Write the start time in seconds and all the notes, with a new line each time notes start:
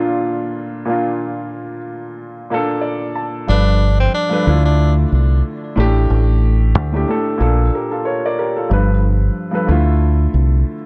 Already playing: A#2 A#3 D4 F4 A4
0.85 A#2 A#3 D4 F4
2.50 A#2 A#3 D4 A4
2.81 D5
3.15 A5
3.47 G1 G2 F3 D4 A4
3.51 B4
4.00 C4
4.14 D4
4.29 G2 F3 A4 B4
4.45 D2 D3 A3 E4 F4
4.65 D4
5.12 C2
5.76 A1 A2 A3 D4 G4
6.10 A1
6.75 D2
6.92 A2 A3 D4 G4
7.07 A2 A3 D4 A4
7.38 A#1 A#2 A#3 D4 A4
7.75 G4 A#4
7.91 F4 A4
8.05 A#4 C#5
8.26 A#4 D5
8.39 G4 A#4
8.56 F4 A4
8.69 G1 G2 F3 A4 B4
9.51 G2 F3 A4 B4
9.67 D2 D3 A3 E4 F4
10.34 C2